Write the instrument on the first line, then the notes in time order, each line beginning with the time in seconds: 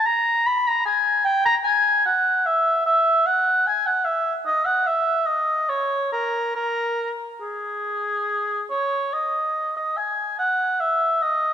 oboe
0.06 A#5
0.46 B5
0.68 A#5
0.85 G#5
1.25 G5
1.45 A#5
1.64 G#5
2.05 F#5
2.46 E5
2.86 E5
3.26 F#5
3.67 G#5
3.86 F#5
4.05 E5
4.46 D#5
4.65 F#5
4.86 E5
5.26 D#5
5.69 C#5
6.12 A#4
6.55 A#4
7.41 G#4
8.70 C#5
9.13 D#5
9.76 D#5
9.97 G#5
10.39 F#5
10.80 E5
11.22 D#5